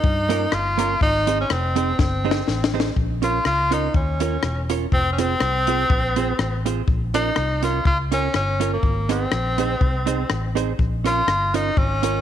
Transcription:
Already playing: tenor saxophone D#4
0.04 fingered electric bass G2, kick
0.29 hollow-body jazz guitar A#3 C#4 F4 A#4, closed hi-hat
0.52 fingered electric bass G1, tenor saxophone F4, cross-stick
0.78 hollow-body jazz guitar A#3 C#4 F4 A#4, closed hi-hat
1.01 fingered electric bass G#1, tenor saxophone D#4, kick
1.27 hollow-body jazz guitar C4 D#4 G#4 C5, closed hi-hat
1.41 tenor saxophone C#4
1.50 fingered electric bass F1, tenor saxophone C4, cross-stick
1.76 hollow-body jazz guitar C4 D#4 G#4 C5, closed hi-hat
1.99 fingered electric bass G1, tenor saxophone C4, kick, snare
2.25 hollow-body jazz guitar C4 D#4 G#4 C5
2.31 snare
2.48 fingered electric bass A1, snare
2.64 snare
2.74 hollow-body jazz guitar C4 D#4 G#4 C5
2.80 snare
2.96 fingered electric bass A#1, kick
3.22 hollow-body jazz guitar C#4 F4 A#4 C#5, tenor saxophone F4, closed hi-hat
3.45 fingered electric bass C#2, tenor saxophone F4, cross-stick
3.71 hollow-body jazz guitar C#4 F4 A#4 C#5, tenor saxophone D#4, closed hi-hat
3.94 fingered electric bass D#2, tenor saxophone C#4, kick
4.20 hollow-body jazz guitar C#4 F4 A#4 C#5, closed hi-hat
4.43 fingered electric bass E1, cross-stick
4.70 hollow-body jazz guitar C#4 F4 A#4 C#5, closed hi-hat
4.92 fingered electric bass F1, tenor saxophone C4, kick
5.12 tenor saxophone C#4
5.18 hollow-body jazz guitar C4 F4 G#4 C5, tenor saxophone C4, cross-stick, closed hi-hat
5.40 fingered electric bass C2, cross-stick
5.67 hollow-body jazz guitar C4 F4 G#4 C5, closed hi-hat
5.90 fingered electric bass A#1, kick
6.16 hollow-body jazz guitar C4 F4 G#4 C5, closed hi-hat
6.39 fingered electric bass A1, cross-stick
6.66 hollow-body jazz guitar C4 F4 G#4 C5, closed hi-hat
6.88 fingered electric bass A#1, kick
7.14 hollow-body jazz guitar C#4 F4 A#4 C#5, tenor saxophone D#4, closed hi-hat
7.36 fingered electric bass C2, cross-stick
7.63 hollow-body jazz guitar C#4 F4 A#4 C#5, tenor saxophone F4, closed hi-hat
7.85 fingered electric bass C#2, tenor saxophone F4, kick
8.11 hollow-body jazz guitar C#4 F4 A#4 C#5, tenor saxophone C#4, closed hi-hat
8.34 fingered electric bass G1, tenor saxophone C#4, cross-stick
8.60 hollow-body jazz guitar C#4 F4 A#4 C#5, closed hi-hat
8.73 tenor saxophone A#3
8.83 fingered electric bass G#1, kick
9.09 hollow-body jazz guitar C4 D#4 G#4 C5, tenor saxophone C4, cross-stick, closed hi-hat
9.32 fingered electric bass A#1, cross-stick
9.58 hollow-body jazz guitar C4 D#4 G#4 C5, closed hi-hat
9.81 fingered electric bass C2, kick
10.06 hollow-body jazz guitar C4 D#4 G#4 C5, closed hi-hat
10.30 fingered electric bass A1, cross-stick
10.55 hollow-body jazz guitar C4 D#4 G#4 C5, closed hi-hat
10.79 fingered electric bass A#1, kick
11.04 hollow-body jazz guitar C#4 F4 A#4 C#5, tenor saxophone F4, cross-stick, closed hi-hat
11.27 fingered electric bass G1, cross-stick
11.54 hollow-body jazz guitar C#4 F4 A#4 C#5, tenor saxophone D#4, closed hi-hat
11.77 fingered electric bass G#1, tenor saxophone C#4, kick
12.03 hollow-body jazz guitar C#4 F4 A#4 C#5, closed hi-hat

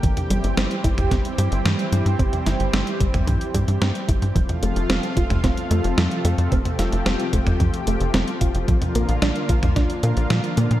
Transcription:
Already playing: analog synth pad G4
0.03 analog synth bass G1, analog synth pad E3 G3 C4, synth arpeggio sound E3, kick, closed hi-hat
0.17 closed hi-hat, mid tom
0.30 analog synth bass G1, synth arpeggio sound G3, closed hi-hat
0.44 analog synth bass G1, closed hi-hat
0.57 analog synth bass G1, synth arpeggio sound C4, snare, closed hi-hat
0.71 closed hi-hat
0.84 analog synth bass G1, synth arpeggio sound E4, kick, closed hi-hat
0.98 analog synth bass G1, kick, closed hi-hat, mid tom
1.11 analog synth bass G1, synth arpeggio sound C4, kick, snare, closed hi-hat
1.25 closed hi-hat
1.38 analog synth bass G2, synth arpeggio sound G3, closed hi-hat
1.52 analog synth bass G1, closed hi-hat
1.65 analog synth bass G2, synth arpeggio sound E3, snare, closed hi-hat
1.79 closed hi-hat
1.92 analog synth bass G2, synth arpeggio sound G3, closed hi-hat
2.06 analog synth bass G2, closed hi-hat
2.19 analog synth bass G1, synth arpeggio sound C4, kick, closed hi-hat
2.33 closed hi-hat, mid tom
2.46 analog synth bass G1, synth arpeggio sound E4, snare, closed hi-hat
2.60 analog synth bass G1, closed hi-hat
2.73 analog synth bass G1, synth arpeggio sound C4, snare, closed hi-hat
2.87 closed hi-hat
3.00 analog synth bass G1, synth arpeggio sound G3, kick, closed hi-hat
3.14 analog synth bass G1, kick, closed hi-hat, mid tom
3.27 analog synth bass G2, synth arpeggio sound E3, kick, closed hi-hat
3.41 closed hi-hat
3.54 analog synth bass G2, synth arpeggio sound G3, kick, closed hi-hat
3.68 analog synth bass G2, closed hi-hat
3.82 analog synth bass G2, synth arpeggio sound C4, snare, closed hi-hat
3.95 closed hi-hat
4.09 analog synth bass G1, synth arpeggio sound E4, kick, closed hi-hat
4.22 analog synth bass G2, closed hi-hat
4.36 analog synth bass F1, analog synth pad C3 F3 A3 F4, synth arpeggio sound F3, kick, closed hi-hat
4.49 closed hi-hat, mid tom
4.63 analog synth bass F1, synth arpeggio sound A3, closed hi-hat
4.76 analog synth bass F1, closed hi-hat
4.89 analog synth bass F1, synth arpeggio sound C4, snare, closed hi-hat
5.03 closed hi-hat
5.17 analog synth bass F1, synth arpeggio sound F4, kick, closed hi-hat
5.30 analog synth bass F1, kick, closed hi-hat, mid tom
5.44 analog synth bass F1, synth arpeggio sound C4, kick, snare, closed hi-hat
5.57 closed hi-hat
5.71 analog synth bass F2, synth arpeggio sound A3, closed hi-hat
5.84 analog synth bass F1, closed hi-hat
5.98 analog synth bass F2, synth arpeggio sound F3, snare, closed hi-hat
6.11 closed hi-hat
6.25 analog synth bass F2, synth arpeggio sound A3, closed hi-hat
6.38 analog synth bass F2, closed hi-hat
6.52 analog synth bass F1, synth arpeggio sound C4, analog synth pad G4, kick, closed hi-hat
6.65 closed hi-hat, mid tom
6.79 analog synth bass F1, synth arpeggio sound F4, snare, closed hi-hat
6.92 analog synth bass F1, closed hi-hat
7.06 analog synth bass F1, synth arpeggio sound C4, snare, closed hi-hat
7.20 closed hi-hat
7.33 analog synth bass F1, synth arpeggio sound A3, kick, closed hi-hat
7.46 analog synth bass F1, closed hi-hat, mid tom
7.60 analog synth bass F2, synth arpeggio sound F3, kick, closed hi-hat
7.74 closed hi-hat
7.87 analog synth bass F1, synth arpeggio sound A3, closed hi-hat
8.00 analog synth bass F1, closed hi-hat
8.14 analog synth bass F1, synth arpeggio sound C4, snare, closed hi-hat
8.28 closed hi-hat
8.41 analog synth bass F1, synth arpeggio sound F4, kick, closed hi-hat
8.55 analog synth bass F1, closed hi-hat
8.68 analog synth bass A#1, analog synth pad D3 A#3 F4, synth arpeggio sound F3, kick, closed hi-hat
8.82 closed hi-hat, mid tom
8.95 analog synth bass A#1, synth arpeggio sound A#3, closed hi-hat
9.09 analog synth bass A#1, closed hi-hat
9.22 analog synth bass A#1, synth arpeggio sound D4, snare, closed hi-hat
9.36 closed hi-hat
9.49 analog synth bass A#1, synth arpeggio sound F4, kick, closed hi-hat
9.63 analog synth bass A#1, kick, closed hi-hat, mid tom
9.76 analog synth bass A#1, synth arpeggio sound D4, kick, snare, closed hi-hat
9.90 closed hi-hat
10.03 analog synth bass A#2, synth arpeggio sound A#3, closed hi-hat
10.17 analog synth bass A#1, closed hi-hat
10.30 analog synth bass A#2, synth arpeggio sound F3, snare, closed hi-hat
10.44 closed hi-hat
10.57 analog synth bass A#2, synth arpeggio sound A#3, closed hi-hat
10.71 analog synth bass A#2, closed hi-hat

